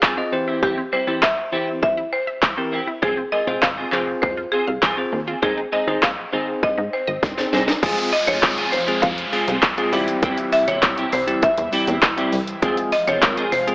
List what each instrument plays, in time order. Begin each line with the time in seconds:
Already playing: marimba G#4, impact
0.02 synth arpeggio sound F3, clean electric guitar C4 F4 G#4, kick, clap
0.17 tine electric piano C4 F4 G#4 D#5, synth arpeggio sound C4, muted clean electric guitar stroke
0.32 tine electric piano E3 C4 E4 G4 C5, muted clean electric guitar stroke
0.47 clean electric guitar C4 E4 G4, synth arpeggio sound E4
0.62 synth arpeggio sound E3, clean electric guitar C4 E4 G4, marimba G4, kick
0.78 synth arpeggio sound C4
0.92 synth arpeggio sound G3, clean electric guitar C4 E4 G4, tine electric piano G4 C5, marimba C5
1.07 tine electric piano E3 C4 E4 G4 C5, clean electric guitar C4 E4 G4, synth arpeggio sound E4
1.22 synth arpeggio sound C4, marimba E5, muted clean electric guitar stroke, kick, clap
1.38 muted clean electric guitar stroke
1.52 tine electric piano E3 C4 E4 G4 C5, synth arpeggio sound E3, clean electric guitar C4 E4 G4
1.67 muted clean electric guitar stroke
1.82 marimba E5, muted clean electric guitar stroke, kick
1.97 synth arpeggio sound E4, muted clean electric guitar stroke
2.13 marimba C5
2.27 synth arpeggio sound E5, muted clean electric guitar stroke
2.42 synth arpeggio sound E3, kick, clap
2.57 tine electric piano E3 C4 E4 G4 A#4, synth arpeggio sound C4, muted clean electric guitar stroke
2.72 clean electric guitar C4 E4 G4
2.87 synth arpeggio sound E4, muted clean electric guitar stroke
3.02 analog synth bass F1, synth arpeggio sound F3, clean electric guitar C4 F4 G#4, tine electric piano C4 F4 G#4 C5, marimba G#4, kick, swell
3.17 synth arpeggio sound C4, muted clean electric guitar stroke
3.32 synth arpeggio sound G#3, clean electric guitar C4 F4 G#4, tine electric piano G#4 A#4, marimba D#5
3.47 analog synth bass F1, tine electric piano C4 F4 G#4 C5, clean electric guitar C4 F4 G#4, synth arpeggio sound F4
3.62 analog synth bass G#1, synth arpeggio sound C4, marimba F5, muted clean electric guitar stroke, kick, clap
3.77 clean electric guitar C4 F4 G#4
3.92 analog synth bass F1, synth arpeggio sound F3, clean electric guitar C4 F4 G#4, tine electric piano C4 F4 G#4 C5, clap
4.07 muted clean electric guitar stroke
4.22 analog synth bass F2, marimba C5, kick
4.37 synth arpeggio sound F4, muted clean electric guitar stroke
4.52 clean electric guitar C4 F4 G#4, marimba G#4
4.67 analog synth bass C2, synth arpeggio sound F5, muted clean electric guitar stroke
4.82 analog synth bass F1, synth arpeggio sound F3, clean electric guitar C4 F4 G#4, kick, clap
4.97 synth arpeggio sound C4, tine electric piano C4 F4 G#4 C5, muted clean electric guitar stroke
5.12 analog synth bass D#2, muted clean electric guitar stroke
5.27 clean electric guitar C4 F4 G#4, synth arpeggio sound F4
5.42 analog synth bass G#1, synth arpeggio sound D#3, clean electric guitar C4 D#4 G#4, tine electric piano C4 D#4 G#4 C5, marimba G#4, kick
5.58 synth arpeggio sound C4
5.72 synth arpeggio sound G#3, clean electric guitar C4 D#4 G#4, tine electric piano G#4 C5, marimba D#5
5.87 analog synth bass G#1, tine electric piano C4 D#4 G#4 C5, clean electric guitar C4 D#4 G#4, synth arpeggio sound D#4
6.03 analog synth bass A#1, synth arpeggio sound C4, marimba F5, kick, clap
6.17 muted clean electric guitar stroke
6.33 analog synth bass G#1, synth arpeggio sound D#3, clean electric guitar C4 D#4 G#4, tine electric piano C4 D#4 G#4 C5
6.48 muted clean electric guitar stroke
6.63 analog synth bass G#2, marimba D#5, muted clean electric guitar stroke, kick
6.78 analog synth bass G#2, synth arpeggio sound D#4, muted clean electric guitar stroke
6.93 marimba C5
7.07 analog synth bass G#1, synth arpeggio sound D#5, muted clean electric guitar stroke
7.23 analog synth bass G#1, synth arpeggio sound D#3, muted clean electric guitar stroke, kick, snare
7.38 synth arpeggio sound C4, tine electric piano C4 D#4 G#4 C5, muted clean electric guitar stroke, snare
7.53 analog synth bass C2, clean electric guitar C4 D#4 G#4, snare
7.68 synth arpeggio sound D#4, muted clean electric guitar stroke, snare
7.83 analog synth bass F1, analog synth pad C3 F3 G#3 F4, tine electric piano G#3 C4 F4 G#4, clean electric guitar C4 F4 G#4, kick, closed hi-hat, crash, downlifter, shaker
7.98 muted clean electric guitar stroke, closed hi-hat, shaker
8.13 marimba D#5, muted clean electric guitar stroke, open hi-hat, shaker
8.27 analog synth bass F1, clean electric guitar C4 F4 G#4, marimba C#5, closed hi-hat, shaker
8.43 analog synth bass G#1, tine electric piano G#3 C4 F4 G#4, muted clean electric guitar stroke, kick, clap, closed hi-hat, shaker
8.57 clean electric guitar C4 F4 G#4, closed hi-hat, shaker
8.72 analog synth bass F1, marimba C5, muted clean electric guitar stroke, open hi-hat, shaker
8.88 tine electric piano G#3 C4 F4 G#4, muted clean electric guitar stroke, closed hi-hat, shaker
9.02 analog synth bass F2, marimba F5, muted clean electric guitar stroke, kick, closed hi-hat, shaker
9.18 muted clean electric guitar stroke, closed hi-hat, shaker
9.33 tine electric piano G#3 C4 F4 G#4, clean electric guitar C4 F4 G#4, open hi-hat, shaker
9.48 analog synth bass C2, clean electric guitar C4 F4 G#4, closed hi-hat, shaker
9.63 analog synth bass F1, muted clean electric guitar stroke, kick, clap, closed hi-hat, shaker
9.78 tine electric piano G#3 C4 F4 G#4, clean electric guitar C4 F4 G#4, closed hi-hat, shaker
9.92 analog synth bass E1, analog synth pad E3 G3 E4, tine electric piano G3 C4 E4 G4, clean electric guitar C4 E4 G4, open hi-hat, shaker
10.08 muted clean electric guitar stroke, closed hi-hat, shaker
10.23 analog synth bass E1, clean electric guitar C4 E4 G4, kick, closed hi-hat, shaker
10.38 muted clean electric guitar stroke, closed hi-hat, shaker
10.52 marimba E5, muted clean electric guitar stroke, open hi-hat, shaker
10.68 analog synth bass E1, clean electric guitar C4 E4 G4, marimba C#5, closed hi-hat, shaker
10.82 analog synth bass E1, tine electric piano G3 C4 E4 G4, kick, clap, closed hi-hat, shaker
10.98 clean electric guitar C4 E4 G4, closed hi-hat, shaker
11.12 analog synth bass C2, marimba C5, muted clean electric guitar stroke, open hi-hat, shaker
11.27 tine electric piano G3 C4 E4 G4, muted clean electric guitar stroke, closed hi-hat, shaker
11.43 analog synth bass E2, marimba E5, muted clean electric guitar stroke, kick, closed hi-hat, shaker
11.58 analog synth bass E2, muted clean electric guitar stroke, closed hi-hat, shaker
11.72 tine electric piano G3 C4 E4 G4, clean electric guitar C4 E4 G4, open hi-hat, shaker
11.88 analog synth bass E2, clean electric guitar C4 E4 G4, closed hi-hat, shaker
12.02 analog synth bass E1, kick, clap, closed hi-hat, shaker
12.17 tine electric piano G3 C4 E4 G4, clean electric guitar C4 E4 G4, closed hi-hat, shaker
12.33 analog synth bass C2, muted clean electric guitar stroke, open hi-hat, shaker
12.47 muted clean electric guitar stroke, closed hi-hat, shaker
12.62 analog synth bass F1, analog synth pad C3 F3 G#3 F4, tine electric piano G#3 C4 F4 G#4, clean electric guitar C4 F4 G#4, kick, closed hi-hat, shaker
12.77 muted clean electric guitar stroke, closed hi-hat, shaker
12.92 marimba D#5, muted clean electric guitar stroke, open hi-hat, shaker
13.07 analog synth bass F1, clean electric guitar C4 F4 G#4, marimba C#5, closed hi-hat, shaker
13.22 analog synth bass G#1, tine electric piano G#3 C4 F4 A#4, muted clean electric guitar stroke, kick, clap, closed hi-hat, shaker
13.37 clean electric guitar C4 F4 G#4, closed hi-hat, shaker
13.52 analog synth bass F1, marimba C5, muted clean electric guitar stroke, open hi-hat, shaker
13.67 tine electric piano G#3 C4 F4 G#4, muted clean electric guitar stroke, closed hi-hat, shaker